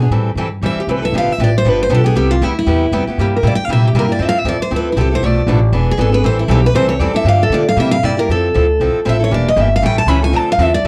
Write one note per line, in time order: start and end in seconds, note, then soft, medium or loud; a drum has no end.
0.00 0.11 B3 soft
0.00 0.11 D4 medium
0.00 0.11 G#4 medium
0.10 0.35 A2 medium
0.10 0.29 E3 medium
0.10 0.29 G3 medium
0.10 0.29 C4 medium
0.10 0.29 E4 medium
0.10 0.30 A4 medium
0.35 0.61 G2 medium
0.35 0.47 E3 medium
0.35 0.47 G3 medium
0.35 0.47 C4 medium
0.35 0.47 E4 medium
0.35 0.47 A4 medium
0.61 0.75 E2 medium
0.61 0.80 E3 medium
0.61 0.80 G3 medium
0.61 0.81 C4 medium
0.61 0.81 E4 medium
0.61 0.81 A4 medium
0.66 0.78 E5 medium
0.75 muted upright bass stroke soft
0.80 0.89 G4 soft
0.87 1.12 C2 medium
0.87 0.98 E3 medium
0.87 0.98 G3 medium
0.87 0.98 C4 medium
0.87 0.99 E4 medium
0.87 0.99 A4 medium
0.87 1.03 B4 medium
1.02 1.14 C4 soft
1.02 1.13 E4 medium
1.02 1.13 A4 medium
1.02 1.15 E5 medium
1.12 1.26 G1 medium
1.12 1.32 D3 medium
1.12 1.32 F3 medium
1.12 1.32 B3 medium
1.12 1.32 D4 medium
1.12 1.32 G4 medium
1.18 1.32 F5 medium
1.27 muted upright bass stroke soft
1.32 1.41 E5 medium
1.38 1.64 A1 medium
1.38 1.49 D3 medium
1.38 1.49 F3 medium
1.38 1.50 B3 medium
1.38 1.50 D4 medium
1.38 1.50 G4 loud
1.44 1.55 D5 medium
1.58 1.70 C5 medium
1.64 1.89 G1 medium
1.64 1.83 D3 medium
1.64 1.83 F3 medium
1.64 1.83 B3 medium
1.64 1.84 D4 medium
1.64 1.84 G4 medium
1.70 1.81 B4 medium
1.83 1.92 C5 loud
1.90 2.15 B1 medium
1.90 2.00 D3 medium
1.90 2.00 F3 medium
1.90 2.00 B3 medium
1.90 2.00 D4 medium
1.90 2.01 G4 loud
1.95 2.06 A4 medium
2.04 2.16 B3 medium
2.04 2.16 D4 medium
2.04 2.15 G4 medium
2.04 2.16 G#4 medium
2.16 2.41 C2 medium
2.16 2.34 C3 medium
2.16 2.34 G3 medium
2.16 2.34 B3 medium
2.16 2.34 E4 medium
2.16 2.30 G4 medium
2.16 2.35 G4 medium
2.31 2.44 F4 medium
2.42 2.66 D2 loud
2.42 2.52 C3 medium
2.42 2.52 G3 medium
2.42 2.52 B3 medium
2.42 2.52 E4 medium
2.42 2.57 E4 medium
2.42 2.53 G4 loud
2.59 2.92 E4 medium
2.67 2.91 E2 medium
2.67 2.85 C3 medium
2.67 2.85 G3 medium
2.67 2.85 B3 medium
2.67 2.85 E4 medium
2.67 2.86 G4 medium
2.92 3.05 F2 medium
2.92 3.03 C3 loud
2.92 3.03 G3 loud
2.92 3.03 B3 loud
2.92 3.03 E4 medium
2.92 3.03 G4 loud
3.07 3.19 B3 medium
3.07 3.19 E4 medium
3.07 3.18 G4 medium
3.07 muted upright bass stroke soft
3.18 3.42 G2 medium
3.18 3.37 C3 medium
3.18 3.37 G3 medium
3.18 3.37 A#3 medium
3.18 3.37 E4 medium
3.18 3.37 G4 medium
3.18 3.34 G4 medium
3.37 3.46 A#4 medium
3.43 3.57 A2 loud
3.43 3.54 C3 medium
3.43 3.53 G3 medium
3.43 3.54 A#3 medium
3.43 3.54 E4 medium
3.43 3.54 G4 medium
3.47 3.54 D5 medium
3.55 3.65 G5 loud
3.55 muted upright bass stroke soft
3.65 3.92 A#2 medium
3.65 3.71 F5 medium
3.69 3.87 C3 medium
3.69 3.88 G3 medium
3.69 3.87 A#3 medium
3.69 3.88 E4 medium
3.69 3.88 G4 medium
3.69 3.85 E5 medium
3.88 3.97 G4 soft
3.93 4.18 G2 medium
3.93 4.05 C3 medium
3.93 4.05 G3 medium
3.93 4.06 A#3 medium
3.93 4.06 E4 medium
3.93 4.06 G4 medium
3.99 4.11 A#4 medium
4.08 4.19 A#3 soft
4.08 4.18 E4 medium
4.08 4.19 G4 medium
4.12 4.25 D5 medium
4.19 4.44 F2 medium
4.19 4.38 F3 medium
4.19 4.38 C4 medium
4.19 4.38 E4 medium
4.19 4.38 A4 medium
4.25 4.28 E5 medium
4.29 4.40 F5 loud
4.40 4.47 E5 medium
4.44 4.58 E2 medium
4.44 4.56 F3 medium
4.44 4.56 C4 medium
4.44 4.56 E4 medium
4.44 4.56 A4 medium
4.48 4.61 D5 medium
4.59 4.72 C5 medium
4.59 muted upright bass stroke soft
4.70 4.95 D2 medium
4.70 4.89 F3 medium
4.70 4.89 C4 medium
4.70 4.90 E4 medium
4.70 4.90 A4 medium
4.76 4.88 B4 medium
4.92 5.21 C2 medium
4.92 5.00 E4 soft
4.96 5.07 F3 medium
4.96 5.07 C4 medium
4.96 5.07 E4 loud
4.96 5.07 A4 loud
5.01 5.13 G4 medium
5.11 5.23 C4 soft
5.11 5.23 E4 medium
5.11 5.22 A4 medium
5.11 5.26 C5 medium
5.21 5.46 B1 medium
5.21 5.41 B2 medium
5.21 5.41 F3 medium
5.21 5.41 A3 medium
5.21 5.41 D4 medium
5.21 5.41 A4 medium
5.26 5.75 D5 medium
5.46 5.72 A1 loud
5.46 5.58 B2 medium
5.46 5.58 F3 medium
5.46 5.58 A3 medium
5.46 5.59 D4 loud
5.46 5.59 A4 medium
5.72 5.97 E1 medium
5.72 5.91 E3 medium
5.72 5.91 B3 medium
5.72 5.91 D4 medium
5.72 5.92 G#4 medium
5.91 6.00 G#4 medium
5.97 6.22 G#1 medium
5.97 6.08 E3 medium
5.97 6.09 B3 medium
5.97 6.09 D4 medium
5.97 6.09 G#4 loud
5.97 6.14 A4 medium
6.12 6.24 B3 medium
6.12 6.24 D4 medium
6.12 6.24 G#4 medium
6.12 6.25 B4 medium
6.23 6.48 A1 medium
6.23 6.42 E3 medium
6.23 6.42 G3 medium
6.23 6.42 C4 medium
6.23 6.42 E4 medium
6.23 6.42 A4 medium
6.23 6.39 C5 medium
6.39 6.50 E4 medium
6.48 6.73 B1 loud
6.48 6.59 E3 medium
6.48 6.59 G3 medium
6.48 6.60 C4 medium
6.48 6.60 E4 medium
6.48 6.65 G4 medium
6.48 6.60 A4 medium
6.66 6.75 B4 medium
6.74 6.99 C2 medium
6.74 6.93 E3 medium
6.74 6.93 G3 medium
6.74 6.94 C4 medium
6.74 6.94 E4 medium
6.74 6.94 A4 medium
6.74 6.88 C5 loud
6.89 7.00 C#5 medium
6.99 7.12 E2 medium
6.99 7.11 E3 medium
6.99 7.11 G3 medium
6.99 7.11 C4 medium
6.99 7.12 E4 medium
6.99 7.12 A4 loud
6.99 7.15 D5 medium
7.13 7.25 C4 medium
7.13 7.25 E4 medium
7.13 7.25 A4 medium
7.13 7.27 E5 medium
7.24 7.49 G2 medium
7.24 7.44 D3 medium
7.24 7.44 F3 medium
7.24 7.44 A#3 medium
7.24 7.44 D4 medium
7.24 7.45 G4 medium
7.29 7.42 F5 loud
7.43 7.53 A4 medium
7.50 7.76 D3 loud
7.50 7.62 D3 medium
7.50 7.63 F3 medium
7.50 7.63 A#3 medium
7.50 7.63 D4 loud
7.50 7.63 G4 medium
7.54 7.67 D5 medium
7.69 7.79 F5 loud
7.77 8.02 C3 medium
7.77 7.96 C3 medium
7.77 7.96 G3 medium
7.77 7.96 A#3 medium
7.77 7.96 E4 medium
7.77 7.96 G4 medium
7.77 7.91 E5 medium
7.92 8.05 F5 loud
8.03 8.28 G2 medium
8.03 8.13 C3 medium
8.03 8.14 G3 medium
8.03 8.14 A#3 medium
8.03 8.14 E4 loud
8.03 8.14 G4 loud
8.03 8.18 D5 medium
8.17 8.29 A#3 soft
8.17 8.29 E4 medium
8.17 8.28 G4 medium
8.17 8.30 A#4 medium
8.29 8.54 F2 medium
8.29 8.48 F3 medium
8.29 8.48 C4 medium
8.29 8.48 E4 medium
8.29 8.48 A4 medium
8.29 9.03 A4 medium
8.54 8.79 D2 loud
8.54 8.65 F3 medium
8.54 8.65 C4 medium
8.54 8.65 E4 medium
8.54 8.65 A4 medium
8.80 8.93 C2 medium
8.80 8.99 F3 medium
8.80 8.99 C4 medium
8.80 8.99 E4 medium
8.80 8.99 A4 medium
8.95 muted upright bass stroke soft
9.05 9.31 A1 medium
9.05 9.16 F3 medium
9.05 9.16 C4 medium
9.05 9.16 E4 medium
9.05 9.16 A4 medium
9.05 9.21 E5 medium
9.19 9.31 C4 medium
9.19 9.31 E4 medium
9.19 9.31 A4 medium
9.24 9.33 C#5 medium
9.31 9.56 E1 medium
9.31 9.49 E3 medium
9.31 9.49 A#3 medium
9.31 9.49 D4 medium
9.31 9.50 G4 medium
9.31 9.47 D5 medium
9.49 9.61 D#5 medium
9.56 9.82 G1 loud
9.56 9.67 E3 medium
9.56 9.67 A#3 medium
9.56 9.67 D4 medium
9.56 9.68 G4 medium
9.61 9.73 E5 medium
9.76 9.85 F5 loud
9.82 10.06 A1 medium
9.82 10.01 E3 medium
9.82 10.01 G3 medium
9.82 10.01 C#4 medium
9.82 10.01 E4 medium
9.82 10.01 A4 medium
9.82 9.98 G5 medium
9.98 10.08 A5 medium
10.06 10.32 C#2 medium
10.06 10.18 E3 medium
10.06 10.18 G3 medium
10.06 10.18 C#4 medium
10.06 10.19 E4 loud
10.06 10.19 A4 loud
10.06 10.22 B5 loud
10.22 10.33 C#4 medium
10.22 10.33 E4 medium
10.22 10.33 A4 medium
10.22 10.36 G#5 medium
10.32 10.57 D2 medium
10.32 10.51 D3 medium
10.32 10.52 F3 medium
10.32 10.52 C4 medium
10.32 10.52 D4 medium
10.32 10.52 A4 medium
10.36 10.49 A5 loud
10.52 10.62 F5 loud
10.58 10.83 E2 loud
10.58 10.69 D3 medium
10.58 10.69 F3 medium
10.58 10.69 C4 loud
10.58 10.70 D4 loud
10.58 10.70 A4 loud
10.58 10.74 E5 loud
10.74 10.85 D5 loud
10.83 10.88 F2 medium
10.83 10.88 D3 medium
10.83 10.88 F3 medium